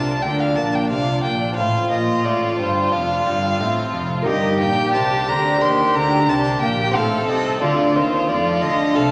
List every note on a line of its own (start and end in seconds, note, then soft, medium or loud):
0.00 0.23 C2 soft
0.00 0.20 C3 soft
0.00 0.23 C3 soft
0.00 1.52 A#3 soft
0.00 0.22 D4 soft
0.00 1.52 D4 soft
0.00 0.87 F4 soft
0.00 1.53 F4 soft
0.00 0.22 A#4 soft
0.00 0.24 A5 medium
0.22 0.57 D2 soft
0.22 0.54 D3 soft
0.22 0.57 D3 soft
0.22 1.55 D4 soft
0.22 0.89 A#4 soft
0.22 0.42 G5 medium
0.40 0.58 F5 medium
0.56 0.91 A#1 soft
0.56 0.87 A#2 soft
0.56 0.91 A#2 soft
0.56 0.77 A5 medium
0.75 0.89 G5 medium
0.90 1.24 C2 soft
0.90 1.21 C3 soft
0.90 1.24 C3 medium
0.90 2.22 F4 soft
0.90 1.57 D5 soft
0.90 1.23 F5 medium
1.23 1.57 A#1 soft
1.23 1.54 A#2 soft
1.23 1.57 A#2 soft
1.23 1.56 G5 medium
1.52 4.21 C4 soft
1.52 4.22 F4 soft
1.56 1.91 A1 medium
1.56 1.88 A2 soft
1.56 1.91 A2 soft
1.56 3.59 F4 soft
1.56 2.25 C5 soft
1.56 1.89 F5 medium
1.90 2.25 A#1 soft
1.90 2.21 A#2 soft
1.90 2.25 A#2 soft
1.90 2.26 D#5 medium
2.24 2.58 A1 soft
2.24 2.56 A2 soft
2.24 2.59 A2 soft
2.24 2.92 F4 soft
2.24 4.27 A4 medium
2.24 2.58 D5 medium
2.59 2.94 G1 soft
2.59 2.93 G2 soft
2.59 2.90 G2 soft
2.59 2.94 C5 medium
2.92 3.26 F1 soft
2.92 3.24 F2 soft
2.92 3.26 F2 soft
2.92 3.61 D4 soft
2.92 4.11 F5 medium
3.26 3.60 G1 soft
3.26 3.57 G2 soft
3.26 3.60 G2 soft
3.60 3.94 A1 soft
3.60 3.91 A2 soft
3.60 3.93 A2 medium
3.60 4.28 C4 soft
3.60 4.26 F4 soft
3.93 4.27 F1 medium
3.93 4.24 F2 soft
3.93 4.27 F2 soft
4.22 6.88 A#3 soft
4.22 6.89 D#4 soft
4.22 6.90 G4 soft
4.22 4.58 D#5 medium
4.27 4.61 G1 medium
4.27 4.57 G2 soft
4.27 4.60 G2 medium
4.27 4.93 D#4 soft
4.27 5.59 G4 medium
4.27 4.94 A#4 soft
4.60 4.95 A#1 soft
4.60 4.91 A#2 soft
4.60 4.95 A#2 soft
4.60 4.94 G5 medium
4.94 5.28 C2 medium
4.94 5.28 C3 medium
4.94 5.25 C3 soft
4.94 6.95 D4 soft
4.94 6.26 C5 medium
4.94 5.30 A5 medium
5.28 5.62 D2 medium
5.28 5.62 D3 medium
5.28 5.59 D3 soft
5.28 5.63 A#5 medium
5.60 5.95 D#2 medium
5.60 5.94 D#3 soft
5.60 5.92 D#3 soft
5.60 6.26 G4 soft
5.60 5.97 C6 medium
5.94 6.28 D2 medium
5.94 6.27 D3 medium
5.94 6.25 D3 soft
5.94 6.30 A#5 medium
6.28 6.62 C2 soft
6.28 6.61 C3 medium
6.28 6.59 C3 soft
6.28 6.94 G4 soft
6.28 6.95 A#4 medium
6.28 6.61 A5 medium
6.61 6.95 A#1 soft
6.61 6.94 A#2 soft
6.61 6.92 A#2 soft
6.61 6.97 G5 medium
6.91 7.28 A2 medium
6.91 9.11 C4 soft
6.91 9.11 D#4 soft
6.91 7.62 A4 medium
6.91 9.11 C5 soft
6.91 7.62 C5 soft
6.95 7.29 A1 medium
6.95 7.25 A2 soft
6.95 8.26 C4 medium
6.95 7.28 F5 medium
7.28 7.62 C2 medium
7.28 7.61 C3 medium
7.28 7.59 C3 soft
7.28 7.61 D#5 medium
7.61 7.95 D2 medium
7.61 7.95 D3 medium
7.61 7.92 D3 soft
7.61 8.28 F4 soft
7.61 8.27 A4 medium
7.61 7.97 D5 medium
7.95 8.29 D#2 medium
7.95 8.29 D#3 medium
7.95 8.26 D#3 soft
7.95 8.31 C5 medium
8.29 8.62 F2 medium
8.29 8.62 F3 medium
8.29 8.59 F3 soft
8.29 8.95 A3 medium
8.29 8.95 F4 medium
8.29 8.94 A4 medium
8.29 8.63 D5 medium
8.62 8.96 D2 medium
8.62 8.96 D3 medium
8.62 8.93 D3 soft
8.62 8.97 D#5 medium
8.95 9.11 C2 medium
8.95 9.11 C3 medium
8.95 9.11 C3 soft
8.95 9.11 A3 medium
8.95 9.11 A4 soft
8.95 9.11 C5 medium
8.95 9.11 F5 medium